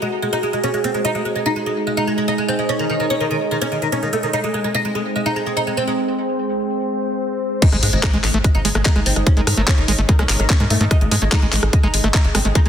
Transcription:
Already playing: G#3 F#4
0.02 G#3
0.22 G#3
0.33 D#4
0.43 G#3
0.53 G#3
0.64 C#4
0.74 G#3
0.84 C4
0.94 G#3
1.05 D#4
1.15 G#3
1.25 G#3
1.36 G#3
1.46 D#4
1.56 G#3
1.66 G#3
1.87 G#3
1.97 D#4
2.07 G#3
2.18 G#3
2.28 D#4
2.38 G#3
2.48 C4
2.59 G#3
2.69 C#4
2.79 D#3
2.90 D#3
3.00 D#3
3.10 C#4
3.20 D#3
3.31 D#3
3.51 D#3
3.62 C#4
3.72 D#3
3.82 D#3
3.92 C#4
4.03 D#3
4.13 A3
4.23 D#3
4.33 C4 D#4
4.44 G#3
4.54 G#3
4.64 G#3
4.75 D#4
4.85 G#3
4.95 G#3
5.16 G#3
5.26 D#4
5.36 G#3
5.46 G#3
5.57 D#4
5.67 G#3
5.77 C4
5.88 G#3
7.62 G#3 D#4, kick, closed hi-hat, crash, impact
7.72 G#1 G#3, cross-stick, closed hi-hat
7.83 G#2 G#3, open hi-hat
7.93 G#1 G#3, closed hi-hat
8.03 D#4, kick, cross-stick, clap, closed hi-hat
8.14 A1 G#3, closed hi-hat
8.24 A1 G#3, cross-stick, clap, open hi-hat
8.34 A1 A3, closed hi-hat
8.44 G#3, kick, cross-stick, closed hi-hat
8.55 G#1 D#4
8.65 G#1 G#3, open hi-hat
8.75 G#1 G#3 A3, cross-stick, closed hi-hat
8.85 G#3 D#4, kick, clap, closed hi-hat
8.96 G#1 G#3, cross-stick, closed hi-hat
9.06 G#1 C4, open hi-hat
9.16 G#1 G#3, cross-stick, closed hi-hat
9.27 C#4, kick, closed hi-hat
9.37 G#1 D#3 G#3, closed hi-hat
9.47 G#2 D#3, cross-stick, open hi-hat
9.57 G#1 D#3 A3
9.68 C#4, kick, cross-stick, clap, closed hi-hat
9.78 G#1 D#3, closed hi-hat
9.88 A1 D#3 G#3, open hi-hat
9.98 G#1 A3, closed hi-hat
10.09 D#3 G#3, kick, closed hi-hat
10.19 C2 G#3 C#4, cross-stick
10.29 G#1 D#3, clap, open hi-hat
10.40 G#1 D#3, cross-stick, closed hi-hat
10.50 C#4, kick, clap, closed hi-hat
10.60 G#2 D#3 G#3, cross-stick, closed hi-hat
10.70 G#2 A3, open hi-hat
10.81 G#2 D#3 A3, closed hi-hat
10.91 D#4, kick, cross-stick, closed hi-hat
11.01 G#1 G#3, closed hi-hat
11.11 G#2 G#3, cross-stick, open hi-hat
11.22 G#1 G#3 A3, closed hi-hat
11.32 G#3 D#4, kick, cross-stick, clap, closed hi-hat
11.42 A1 G#3, closed hi-hat
11.53 A1 G#3, clap, open hi-hat
11.63 A1, cross-stick, closed hi-hat
11.73 G#3, kick, closed hi-hat
11.83 G#1 G#3 D#4, cross-stick
11.94 G#1 G#3, open hi-hat
12.04 G#1 G#3 A3, cross-stick, closed hi-hat
12.14 D#4, kick, clap, closed hi-hat
12.25 G#1 G#3, closed hi-hat
12.35 G#1 G#3 C4, cross-stick, open hi-hat
12.45 G#1 G#3 A3, closed hi-hat
12.55 G#3 D#4, kick, cross-stick, closed hi-hat
12.66 G#1 G#3, closed hi-hat

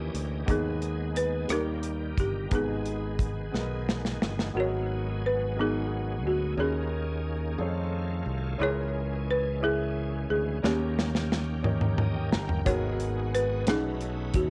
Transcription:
Already playing: E3 A#3 C#4 D#4 E4 G4 A#4 D#5
0.14 D2, closed hi-hat
0.46 D#2 D#3 G#3 B3 D#4 G#4 A#4, kick, closed hi-hat
0.50 B3 D#4 G#4
0.54 B4
0.82 closed hi-hat
1.16 B4, closed hi-hat
1.48 D#2 D#3 G3 A#3 D#4 G4 A#4, cross-stick, closed hi-hat
1.52 A#4
1.83 closed hi-hat
2.18 G1 G4, kick, closed hi-hat
2.50 G#1 G#2 G#3 B3 D#4 G#4 B4, kick, closed hi-hat
2.54 D#3 G#3 B3 G4 G#4
2.61 G#4
2.86 closed hi-hat
3.19 kick, closed hi-hat
3.51 B1 G#3 B3 D#4 G#4 A#4, snare
3.61 B4
3.89 snare
4.05 snare
4.22 G1, snare
4.39 snare
4.54 G#1 G#2 F#3 G#3 B3 D#4 F#4 G4 G#4 A#4
4.60 G#4 C#5
5.26 B4
5.55 B3 D#4 F#4 G#4 A#4
5.59 B3 D#4 G#4
6.23 D2 F#4
6.57 D#2 D#3 A#3 C#4 D#4 G#4 A#4 C#5
7.58 F2 D#3 G#3 C#4 D#4 F4 G#4 A4 C#5
7.65 A3
8.26 C2
8.58 C#2 C#3 E3 G#3 B3 C#4 E4 G#4 A#4 C#5
8.63 C#4 C#5
9.31 B4
9.60 C#4 E4 G#4 A#4 E5
10.30 D2 G#4
10.62 D#2 D#3 A#3 C#4 D#4 G4 A#4 C#5, snare
10.99 snare
11.15 snare
11.32 snare
11.63 C#4 D#4 G4 A#4 C#5, mid tom
11.81 mid tom
11.98 D#5, mid tom
12.15 A#4 G5
12.32 G1 C#5 G5 A#5, snare
12.48 A#4 G5, floor tom
12.64 G#1 G#2 G#3 A#3 B3 D#4 F#4 G#4 A#4 C#5, kick, closed hi-hat
12.71 B3
13.00 closed hi-hat
13.35 B4, closed hi-hat
13.66 B1 B2 A3 C#4 D#4 F#4 G#4 B4, snare, closed hi-hat
14.01 closed hi-hat
14.34 D#2 F#4, kick, closed hi-hat

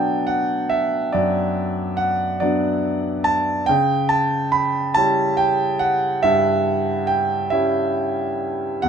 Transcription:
Already playing: B2 F#3 B3 D4 F#5 G5 A5
0.27 F#5
0.70 E5
1.13 F#2 D5
1.97 F#5
2.40 F#3 B3 D4 D5
3.24 A5
3.66 C#3 G5
4.09 A5
4.52 B5
4.94 G3 C#4 E4 A5
5.37 G5
5.79 F#5
6.23 G2 E5
7.07 G5
7.50 G3 C#4 E4 E5
8.82 E2 F#5

